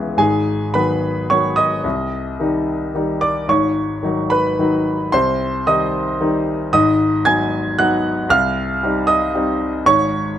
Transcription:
Already playing: C#2 G#3 B3 E4 C#5
0.00 E3
0.17 G#1 G#2 G#4 G#5
0.74 D#3 F#3 B3 B4 B5
1.30 D#3 F#3 B3 C#5 C#6
1.56 D#5 D#6
1.84 C2 C3
2.40 D#3 G3 D#4
2.94 D#3 G3 D#4
3.21 D5 D6
3.48 G#1 G#2 C#5 C#6
4.03 D#3 F#3 D#4
4.30 B4 B5
4.59 D#3 F#3 D#4
5.12 C2 C3 C5 C6
5.67 D#3 G3 D#4 D#5 D#6
6.21 D#3 G3 D#4
6.73 G#1 G#2 D#5 D#6
7.25 F#3 B3 D#4 G#5 G#6
7.79 F#3 B3 D#4 F#5 F#6
8.29 C2 C3 F5 F6
8.83 G3 C4 D#4
9.07 D#5 D#6
9.34 G3 C4 D#4
9.86 G#1 G#2 C#5 C#6

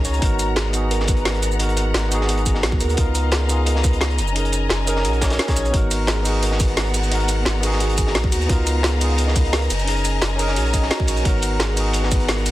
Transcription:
Already playing: C#4 D#4 G#4 A#4 D#5 G#5 A#5
0.05 C#2 C#5, closed hi-hat, shaker
0.14 closed hi-hat, shaker
0.19 G#1 B3 D#4 F#4 F#5, kick, closed hi-hat
0.23 F#4 A#4
0.39 closed hi-hat, shaker
0.56 G#4, snare, closed hi-hat
0.70 B3 D#4, closed hi-hat, shaker
0.75 F#4 G#4
0.91 A#4, closed hi-hat, shaker
1.00 snare
1.08 B4, kick, closed hi-hat, shaker
1.17 closed hi-hat
1.25 A#4, snare, closed hi-hat
1.35 closed hi-hat
1.42 closed hi-hat, shaker
1.52 shaker
1.57 B3 D#4, closed hi-hat
1.61 F#4 A#4
1.69 closed hi-hat
1.77 closed hi-hat, shaker
1.94 G#1, snare, closed hi-hat
2.08 B3 D#4 G#4, closed hi-hat, shaker
2.13 F#4 G#4
2.21 snare
2.29 F#4, closed hi-hat, shaker
2.38 closed hi-hat
2.46 G#4, kick, closed hi-hat, shaker
2.54 snare
2.63 A#1, snare, closed hi-hat
2.72 kick
2.80 D#2 A#4, closed hi-hat, shaker
2.89 closed hi-hat, shaker
2.94 C#2 B3 D#4 F4 D#5 F5 A#5, kick, closed hi-hat
2.99 F4 A#4
3.15 closed hi-hat, shaker
3.32 G#4, snare, closed hi-hat
3.46 B3 D#4, closed hi-hat, shaker
3.50 F4 G#4
3.66 A#4, closed hi-hat, shaker
3.76 snare
3.84 B4, kick, closed hi-hat, shaker
3.93 closed hi-hat
4.01 A#4, snare, closed hi-hat
4.10 closed hi-hat
4.19 F#1 G#5, closed hi-hat, shaker
4.27 shaker
4.33 C#4 D#4, closed hi-hat
4.37 G#4 A#4
4.45 closed hi-hat
4.53 closed hi-hat, shaker
4.70 F#1, snare, closed hi-hat
4.86 C#4 D#4 G#4 A#4, closed hi-hat, shaker
4.96 snare
5.05 A#1 F#4, closed hi-hat, shaker
5.13 closed hi-hat
5.21 C#4 D#4 G#4 A#4 C#5, kick, snare, closed hi-hat, shaker
5.30 snare, closed hi-hat
5.39 snare, closed hi-hat
5.47 C#4 D#4 G#4 C#5, kick, snare, closed hi-hat
5.56 A#1 C#5, closed hi-hat, shaker
5.65 closed hi-hat, shaker
5.71 G#1 B3 D#4 F#4 F#5 A#5, kick, closed hi-hat
5.75 F#4 A#4
5.91 closed hi-hat, ride, shaker
6.07 G#4, snare, closed hi-hat
6.22 B3 D#4, closed hi-hat, ride, shaker
6.27 F#4 G#4
6.42 A#4, closed hi-hat, shaker
6.51 snare
6.60 B4, kick, closed hi-hat, ride, shaker
6.68 closed hi-hat
6.77 A#4, snare, closed hi-hat
6.86 closed hi-hat
6.94 closed hi-hat, ride, shaker
7.03 shaker
7.09 B3 D#4, closed hi-hat
7.13 F#4 A#4
7.20 closed hi-hat
7.28 closed hi-hat, ride, shaker
7.45 G#1, snare, closed hi-hat
7.60 B3 D#4 G#4, closed hi-hat, ride, shaker
7.65 F#4 G#4
7.72 snare
7.80 F#4, closed hi-hat, shaker
7.90 closed hi-hat
7.98 G#4, kick, closed hi-hat, ride, shaker
8.07 snare
8.15 A#1, snare, closed hi-hat
8.24 kick
8.32 D#2 F#4, closed hi-hat, ride, shaker
8.41 closed hi-hat, shaker
8.46 C#2 B3 D#4 F4 D#5 F5, kick, closed hi-hat
8.51 F4 A#4
8.67 closed hi-hat, ride, shaker
8.83 G#4, snare, closed hi-hat
8.98 B3 D#4, closed hi-hat, ride, shaker
9.02 F4 G#4
9.18 A#4, closed hi-hat, shaker
9.28 snare
9.36 B4, kick, closed hi-hat, ride, shaker
9.45 closed hi-hat
9.53 A#4, snare, closed hi-hat
9.62 closed hi-hat
9.70 F#1 G#5, closed hi-hat, ride, shaker
9.79 shaker
9.84 C#4 D#4, closed hi-hat
9.89 G#4 A#4
9.96 closed hi-hat
10.05 closed hi-hat, ride, shaker
10.22 F#1, snare, closed hi-hat
10.36 C#4 D#4 A#4, closed hi-hat, ride, shaker
10.40 G#4 A#4
10.48 snare
10.56 A#1 F#4, closed hi-hat, shaker
10.66 closed hi-hat
10.74 D#5, kick, closed hi-hat, ride, shaker
10.82 snare
10.90 F#4, snare, closed hi-hat
11.00 kick
11.08 A#1 C#5, closed hi-hat, ride, shaker
11.16 closed hi-hat, shaker
11.22 G#1 B3 D#4 F#4 F#5, kick, closed hi-hat
11.26 F#4 A#4
11.42 closed hi-hat, ride, shaker
11.60 G#4, snare, closed hi-hat
11.74 B3 D#4, closed hi-hat, ride, shaker
11.78 F#4 G#4
11.93 A#4, closed hi-hat, shaker
12.03 snare
12.11 B4, kick, closed hi-hat, ride, shaker
12.20 closed hi-hat
12.28 A#4, snare, closed hi-hat
12.38 closed hi-hat
12.46 closed hi-hat, ride, shaker

